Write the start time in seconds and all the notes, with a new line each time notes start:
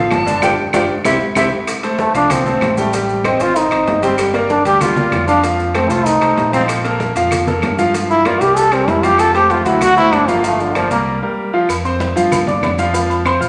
Already playing: F3 F4 A4 F5
0.11 G1 A5, high bongo, low bongo, high conga, high timbale, low timbale, claves, maracas
0.26 D3 D4 D5, high conga, maracas
0.42 G1 D4 F4 G4 G5, high bongo, high conga, high timbale, claves, maracas
0.73 G1 D4 F4 G4 G5, high bongo, high conga, high timbale, claves, maracas
1.05 C2 C4 E4 G4 E5, high bongo, high conga, high timbale, claves, maracas
1.35 C2 C4 E4 G4 E5, high bongo, high conga, high timbale, claves, maracas
1.67 high bongo, high conga, high timbale, claves, maracas
1.83 A3 A4 C5, high bongo, high conga, high timbale, maracas
1.99 A3, high bongo, high conga, low timbale, maracas
2.14 C2 F3 D4 F4 F5, high bongo, high conga, high timbale, maracas
2.30 C4, high bongo, high conga, low conga, high timbale, claves, maracas
2.46 A3 A4 C5, high bongo, high conga, low conga, maracas
2.61 A1, high bongo, low bongo, high conga, high timbale, low timbale, claves, maracas
2.77 G3 A3 G4 G5, high conga, maracas
2.93 G3 G4 G5, high bongo, high conga, high timbale, maracas
3.09 high bongo, high conga, maracas
3.24 C4 C5 D#5, high bongo, high conga, high timbale, low timbale, claves, maracas
3.40 G#1 C4 F4 C5 D#5, high bongo, high timbale, maracas
3.56 D#4, high bongo, high conga, maracas
3.71 G#1 C4 C5 D#5, high bongo, high conga, high timbale, claves, maracas
3.87 G1, high bongo, low bongo, high conga, high timbale, low timbale, maracas
4.02 G3 C4 G4 G5, high conga, high timbale, maracas
4.18 high bongo, high conga, high timbale, claves, maracas
4.34 A#3 A#4 D5, high bongo, high conga, high timbale, maracas
4.50 D4, high bongo, high conga, low timbale, maracas
4.65 D2 G3 G4 G5, high bongo, high conga, high timbale, maracas
4.81 F4, high bongo, high conga, low conga, high timbale, claves, maracas
4.96 A#3 A#4 D5, high bongo, high conga, low conga, maracas
5.11 F2, high bongo, low bongo, high conga, high timbale, low timbale, claves, maracas
5.28 F3 D4 F4 F5, high conga, maracas
5.43 F3 F4 F5, high bongo, high conga, high timbale, maracas
5.59 high bongo, high conga, maracas
5.74 A3 C4 A4 C5, high bongo, high conga, high timbale, low timbale, claves, maracas
5.90 C2 A3 F4 A4 C5, high bongo, high timbale, maracas
6.06 D#4, high bongo, high conga, maracas
6.21 C2 A3 A4 C5, high bongo, high conga, high timbale, claves, maracas
6.37 A#1, high bongo, low bongo, high conga, high timbale, low timbale, maracas
6.53 F3 C4 F4 F5, high conga, high timbale, maracas
6.68 high bongo, high conga, high timbale, claves, maracas
6.85 A#3 A4 A#4, high bongo, high conga, high timbale, maracas
7.00 high bongo, high conga, low timbale, maracas
7.16 F2 F3 F4 F5, high bongo, high conga, high timbale, maracas
7.31 high bongo, high conga, low conga, high timbale, claves, maracas
7.47 A#3 A4 A#4, high bongo, high conga, low conga, maracas
7.62 G2, high bongo, low bongo, high conga, high timbale, low timbale, claves, maracas
7.78 F3 F4 F5, high conga, maracas
7.94 F3 F4 F5, high bongo, high conga, high timbale, maracas
8.09 E4, high bongo, high conga, maracas
8.25 A#3 F4 A#4 D5, high bongo, high conga, high timbale, low timbale, claves, maracas
8.41 C2 G3 G4 A#4, high bongo, high timbale, maracas
8.57 A4, high bongo, high conga, maracas
8.72 G3 C4 G4 A#4, high bongo, high conga, high timbale, claves, maracas
8.87 F2 E4, high bongo, low bongo, high conga, high timbale, low timbale, maracas
9.03 F3 F4 G4 F5, high conga, high timbale, maracas
9.18 A4, high bongo, high conga, high timbale, claves, maracas
9.34 A3 G4 A4 C5, high conga, high timbale, maracas
9.50 F4, high bongo, high conga, low timbale, maracas
9.65 D2 F#3 E4 F#4 F#5, high bongo, high conga, high timbale, maracas
9.81 F#4, high bongo, high conga, low conga, high timbale, claves, maracas
9.96 A3 E4 A4 C5, high conga, maracas
10.12 G1 D4, high bongo, low bongo, high conga, high timbale, low timbale, claves, maracas
10.28 F3 A#3 F4 F5, high conga, maracas
10.44 F3 A3 F4 F5, high bongo, high conga, high timbale, maracas
10.59 D3, high bongo, high conga, maracas
10.75 F3 A#3 A#4 D5, high bongo, high conga, high timbale, low timbale, claves, maracas
10.90 C2 G3 A#3 G4 A#4, high bongo, high timbale, maracas
11.22 G3 G4 A#4
11.53 F3 F4 F5
11.69 F2, cowbell, high conga, low agogo, claves, maracas
11.85 C4 C5 C6, high conga, maracas
12.00 cowbell, high conga, low timbale, low agogo, maracas
12.15 G2 F3 F4 F5, cowbell, high conga, maracas
12.31 cowbell, high conga, low conga, low agogo, claves, maracas
12.47 D4 D5 D6, high conga, low conga, maracas
12.62 F2, cowbell, high conga, low timbale, low agogo, claves, maracas
12.78 F3 F4 F5, cowbell, high conga, maracas
12.94 F3 F4 F5, cowbell, high conga, low agogo, maracas
13.09 high conga, low agogo, maracas
13.25 C4 C5 C6, cowbell, high conga, low timbale, low agogo, claves, maracas
13.40 A#1 F4 F5 F6, maracas